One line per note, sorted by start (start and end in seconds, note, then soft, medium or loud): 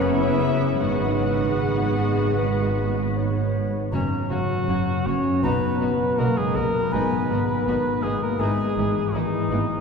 0.00 0.76 F#1 medium
0.00 0.76 F#2 medium
0.00 0.84 F#2 medium
0.00 0.84 C#3 medium
0.00 0.41 B3 medium
0.00 0.77 B3 medium
0.00 3.60 B3 medium
0.00 0.77 C#4 medium
0.00 0.81 C#4 medium
0.00 0.81 E4 medium
0.00 0.83 E4 medium
0.00 0.80 G#4 medium
0.00 0.84 C#5 medium
0.00 0.81 E5 loud
0.42 1.19 B3 medium
0.80 3.68 G#1 medium
0.80 3.68 G#2 medium
0.80 3.96 G#2 medium
0.80 3.72 G#3 medium
0.80 3.68 B3 medium
0.80 3.59 D#4 medium
0.80 3.54 F#4 medium
0.80 3.50 B4 medium
0.80 3.53 F#5 medium
1.20 1.99 B3 soft
1.60 2.34 G#4 medium
1.60 3.14 B4 medium
2.00 2.76 B3 soft
2.38 3.95 D#3 medium
2.38 3.18 B4 medium
2.77 3.53 B3 soft
3.15 3.96 B4 medium
3.15 3.93 C#5 medium
3.54 3.95 B3 soft
3.92 4.01 F#1 medium
3.92 5.46 F#2 medium
3.92 4.01 F#2 medium
3.92 4.00 A#3 medium
3.92 4.21 C#4 medium
3.92 4.01 F#4 medium
3.92 4.00 C#5 medium
3.92 4.27 A#5 medium
4.30 4.38 F#1 medium
4.30 4.39 F#2 medium
4.30 5.47 C#3 medium
4.30 5.02 F#3 medium
4.30 4.39 A#3 medium
4.30 4.38 F#4 medium
4.30 5.09 F#4 loud
4.30 4.38 C#5 medium
4.68 4.76 F#1 medium
4.68 4.77 F#2 medium
4.68 4.76 A#3 medium
4.68 6.18 F#4 medium
4.68 4.77 F#4 medium
4.68 4.76 C#5 medium
5.05 5.14 F#1 medium
5.05 5.15 F#2 medium
5.05 5.13 A#3 medium
5.05 5.43 C#4 medium
5.05 6.96 C#4 soft
5.05 5.16 F#4 medium
5.05 5.15 C#5 medium
5.05 5.45 C#5 loud
5.43 5.52 B1 medium
5.43 5.52 B2 medium
5.43 6.96 B2 medium
5.43 6.18 B3 loud
5.43 5.52 B3 medium
5.43 5.70 D#4 medium
5.43 5.51 F#4 medium
5.43 6.20 B4 medium
5.43 5.52 D#5 medium
5.43 5.78 A#5 medium
5.80 5.90 B1 medium
5.80 5.89 B2 medium
5.80 8.44 F#3 medium
5.80 5.88 B3 medium
5.80 5.89 F#4 medium
5.80 5.89 D#5 medium
6.18 6.27 B1 medium
6.18 6.26 B2 medium
6.18 6.37 A#3 medium
6.18 6.26 B3 medium
6.18 6.27 F#4 medium
6.18 7.66 F#4 medium
6.18 6.39 A#4 loud
6.18 6.26 D#5 medium
6.37 6.55 G#3 medium
6.37 6.57 G#4 medium
6.55 6.64 B1 medium
6.55 6.63 B2 medium
6.55 6.63 B3 medium
6.55 8.03 B3 medium
6.55 6.64 F#4 medium
6.55 6.94 A#4 loud
6.55 6.93 A#4 medium
6.55 6.64 D#5 medium
6.91 7.01 G#1 medium
6.91 7.01 G#2 medium
6.91 8.40 G#2 medium
6.91 7.00 B3 medium
6.91 8.02 B3 medium
6.91 7.20 D#4 medium
6.91 7.02 F#4 medium
6.91 8.04 B4 loud
6.91 7.02 D#5 medium
6.91 7.26 G#5 medium
7.29 7.38 G#1 medium
7.29 7.38 G#2 medium
7.29 8.44 D#3 medium
7.29 7.38 B3 medium
7.29 7.39 F#4 medium
7.29 7.39 D#5 medium
7.66 7.75 G#1 medium
7.66 7.75 G#2 medium
7.66 7.74 B3 medium
7.66 8.44 F#4 medium
7.66 7.76 F#4 medium
7.66 7.76 D#5 medium
8.03 8.12 G#1 medium
8.03 8.13 G#2 medium
8.03 8.23 G#3 medium
8.03 8.11 B3 medium
8.03 9.50 B3 medium
8.03 8.12 F#4 medium
8.03 8.21 G#4 loud
8.03 8.14 D#5 medium
8.22 8.40 A#3 medium
8.22 8.42 A#4 medium
8.39 8.47 G#1 medium
8.39 9.81 G#2 medium
8.39 8.50 G#2 medium
8.39 9.13 G#3 loud
8.39 8.48 B3 medium
8.39 8.67 D#4 medium
8.39 8.49 E4 medium
8.39 9.16 G#4 medium
8.39 8.49 D#5 medium
8.39 8.74 G#5 medium
8.77 8.85 G#1 medium
8.77 8.87 G#2 medium
8.77 9.81 E3 medium
8.77 8.85 B3 medium
8.77 8.86 E4 medium
8.77 8.86 D#5 medium
9.13 9.22 G#1 medium
9.13 9.23 G#2 medium
9.13 9.81 E3 medium
9.13 9.21 B3 medium
9.13 9.81 D#4 medium
9.13 9.21 E4 medium
9.13 9.81 G#4 medium
9.13 9.23 D#5 medium
9.50 9.58 G#1 medium
9.50 9.60 G#2 medium
9.50 9.59 B3 medium
9.50 9.81 B3 medium
9.50 9.59 E4 medium
9.50 9.60 D#5 medium